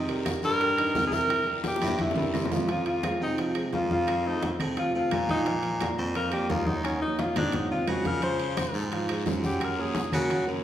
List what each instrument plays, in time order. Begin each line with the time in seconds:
Already playing: baritone saxophone C3
0.09 grand piano G3 G4 A#4, high bongo, high conga, high timbale
0.25 high bongo, high conga, high timbale, low timbale, short guiro, claves
0.43 baritone saxophone G2, grand piano G3 G4 A#4, alto saxophone A#4, high conga, short guiro
0.60 high bongo, high conga, high timbale, long guiro
0.78 grand piano D#3 D#4 D#5, high bongo, high conga, high timbale, claves
0.95 baritone saxophone C3, grand piano G3 G4 A#4, high bongo, low bongo, high conga, low timbale, short guiro
1.07 alto saxophone G#4
1.12 grand piano E3 E4 E5, alto saxophone A#4, high bongo, high conga, short guiro
1.30 high bongo, high conga, high timbale, long guiro, claves
1.46 grand piano G3 G4 A#4, high bongo, high conga
1.64 grand piano G3 G4 A#4, high bongo, high conga, high timbale, low timbale, short guiro
1.68 alto saxophone G4
1.76 high bongo
1.82 baritone saxophone G2, grand piano E3 E4 E5, high conga, high timbale, short guiro, claves
1.88 high bongo
1.99 alto saxophone E4, high conga, high timbale, long guiro
2.11 low bongo
2.16 baritone saxophone G2, grand piano G3 G4 A#4, low conga, high timbale
2.23 low bongo
2.34 baritone saxophone F2, low bongo, low timbale, short guiro, claves
2.45 low bongo
2.52 grand piano F3 F4 F5, low conga, low timbale, short guiro
2.57 low bongo
2.69 grand piano F3 F4 F5, alto saxophone F4, high bongo, high conga, high timbale
2.86 alto saxophone F4, high bongo, high conga, high timbale
3.03 grand piano G#3 G#4 C5, high bongo, high conga, high timbale, low timbale, claves
3.21 baritone saxophone C3, alto saxophone D#4, high conga
3.38 grand piano F3 F4 F5, high bongo, high conga, high timbale
3.55 grand piano G#3 G#4 C5, high bongo, high conga, high timbale, claves
3.73 baritone saxophone F2, alto saxophone F4, high bongo, low bongo, high conga, low timbale
3.90 grand piano F3 F4 F5, alto saxophone F4, high bongo, high conga
4.07 high bongo, high conga, high timbale, claves
4.26 grand piano A3 A4 C5, alto saxophone D#4, high bongo, high conga
4.43 high bongo, high conga, high timbale, low timbale
4.60 baritone saxophone C3, grand piano A3 A4 C5, high conga, low conga, high timbale, claves
4.77 grand piano F3 F4 F5, alto saxophone F4, high bongo, high conga, high timbale
4.94 baritone saxophone C3, grand piano A3 A4 C5, alto saxophone F4, high bongo, high conga
5.11 baritone saxophone A#2, high bongo, low bongo, high conga, high timbale, low timbale, claves
5.29 grand piano F3 F4 F5, alto saxophone D#4, high bongo, high conga, high timbale
5.46 grand piano F3 F4 F5, high bongo, high conga, high timbale
5.63 high bongo, high conga, high timbale
5.80 grand piano A#3 A#4 D5, high bongo, high conga, high timbale, low timbale, claves
5.99 baritone saxophone F2, high conga
6.15 grand piano F3 F4 F5, alto saxophone A#4, high bongo, high conga, high timbale
6.32 grand piano A#3 A#4 D5, alto saxophone G4, high bongo, high conga, high timbale, claves
6.50 baritone saxophone D#2, alto saxophone F4, high bongo, low bongo, high conga, low timbale
6.66 grand piano F#3 F#4 F#5, alto saxophone D#4, high bongo, high conga
6.84 alto saxophone C#4, high bongo, high conga, high timbale, claves
7.02 grand piano A#3 A#4 C#5, alto saxophone D#4, high bongo, high conga
7.19 alto saxophone F4, high bongo, high conga, high timbale, low timbale
7.36 baritone saxophone G#2, grand piano C4 C5 D#5, alto saxophone D4, high bongo, high conga, low conga, high timbale, claves
7.52 grand piano F#3 F#4 F#5, alto saxophone D#4, high bongo, high conga, low conga, high timbale
7.70 baritone saxophone C3, grand piano C4 C5 D#5, alto saxophone F4, high conga
7.87 baritone saxophone C#3, alto saxophone F#4, high conga, high timbale, low timbale, claves
8.05 grand piano F3 F4 F5, alto saxophone A#4, low bongo, high conga, high timbale
8.22 grand piano F3 F4, alto saxophone C5, high bongo, high conga, high timbale, long guiro
8.39 high bongo, high conga, high timbale
8.57 grand piano G#3 G#4 C5, high bongo, high conga, high timbale, low timbale, short guiro, claves
8.74 baritone saxophone G#2, high conga, short guiro
8.92 grand piano F3 F4 F5, high bongo, high conga, high timbale, long guiro
9.09 grand piano G#3 G#4 C5, high bongo, high conga, high timbale, claves
9.26 baritone saxophone F#2, high bongo, low bongo, high conga, low timbale, short guiro
9.43 grand piano F#3 F#4 F#5, alto saxophone G4, high bongo, high conga, short guiro
9.61 alto saxophone A#4, high bongo, high conga, high timbale, long guiro, claves
9.78 grand piano A#3 A#4 C#5, alto saxophone G#4, high bongo, high conga
9.95 high bongo, high conga, high timbale, low timbale, short guiro
10.12 baritone saxophone C#3, grand piano A#3 A#4 C#5, alto saxophone F#4, high conga, low conga, high timbale, short guiro, claves
10.29 grand piano F#3 F#4 F#5, high bongo, high conga, high timbale, long guiro
10.47 baritone saxophone F#2, grand piano A#3 A#4 C#5, high bongo, high conga